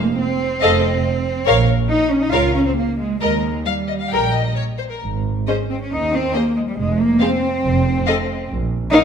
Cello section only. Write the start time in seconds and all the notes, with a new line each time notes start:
Already playing: A#3
0.18 C4
1.89 D#4
2.11 C#4
2.22 D#4
2.32 F4
2.54 C#4
2.66 C4
2.76 A#3
2.99 G#3
3.21 G#3
3.67 G3
5.48 C#4
5.71 C4
5.81 C#4
5.92 D#4
6.14 C4
6.35 A#3
6.56 G#3
6.68 G3
6.78 G#3
7.00 A#3
7.21 C4
8.93 D#4